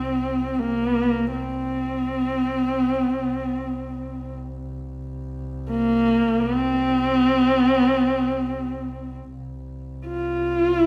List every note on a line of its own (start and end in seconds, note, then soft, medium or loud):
0.00 3.15 C2 medium
0.00 0.60 C4 medium
0.59 1.31 A#3 medium
1.32 4.36 C4 medium
3.15 9.31 C2 medium
5.69 6.42 A#3 medium
6.41 9.15 C4 loud
9.32 10.86 C2 medium
10.06 10.86 F4 medium